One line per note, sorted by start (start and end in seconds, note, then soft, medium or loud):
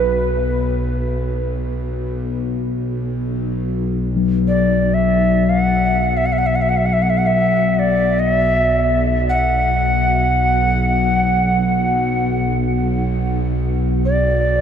0.00 3.15 B1 medium
0.00 0.43 B4 medium
3.16 14.61 B1 medium
4.16 12.11 F#3 soft
4.48 4.95 D5 medium
4.94 5.51 E5 medium
5.50 6.18 F#5 medium
6.17 6.27 E5 medium
6.26 6.34 F#5 medium
6.32 6.39 E5 medium
6.38 6.48 F#5 medium
6.46 6.57 E5 medium
6.55 6.63 F#5 medium
6.61 6.70 E5 medium
6.69 6.78 F#5 medium
6.77 6.87 E5 medium
6.85 6.95 F#5 medium
6.93 7.04 E5 medium
7.02 7.11 F#5 medium
7.10 7.19 E5 medium
7.17 7.28 F#5 medium
7.26 7.74 E5 medium
7.74 7.80 E5 medium
7.79 8.21 D5 medium
8.19 8.30 D#5 medium
8.30 9.01 E5 medium
9.29 12.54 F#5 medium
14.05 14.61 D5 medium